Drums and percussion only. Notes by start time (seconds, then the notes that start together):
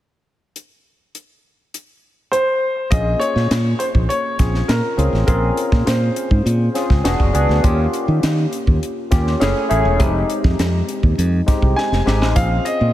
0.56 closed hi-hat
1.15 closed hi-hat
1.74 closed hi-hat
2.33 closed hi-hat
2.92 kick, closed hi-hat
3.21 closed hi-hat
3.37 snare
3.51 snare, closed hi-hat
3.80 closed hi-hat
3.95 kick
4.10 closed hi-hat
4.39 kick, snare, closed hi-hat
4.55 snare
4.69 snare, closed hi-hat
4.99 closed hi-hat
5.14 snare
5.28 kick, closed hi-hat
5.57 closed hi-hat
5.72 kick, snare
5.87 snare, closed hi-hat
6.16 closed hi-hat
6.31 kick
6.47 closed hi-hat
6.75 snare, closed hi-hat
6.90 kick, snare
7.05 snare, closed hi-hat
7.20 kick
7.35 closed hi-hat
7.50 snare
7.64 kick, closed hi-hat
7.93 closed hi-hat
8.23 snare, closed hi-hat
8.53 closed hi-hat
8.67 kick
8.83 closed hi-hat
9.12 kick, snare, closed hi-hat
9.27 snare
9.41 snare, closed hi-hat
9.71 closed hi-hat
10.00 kick, closed hi-hat
10.30 closed hi-hat
10.44 kick, snare
10.59 snare, closed hi-hat
10.89 closed hi-hat
11.03 kick
11.19 closed hi-hat
11.48 kick, snare, closed hi-hat
11.62 kick
11.78 snare
11.93 snare
12.07 snare
12.22 snare
12.36 kick, closed hi-hat
12.66 closed hi-hat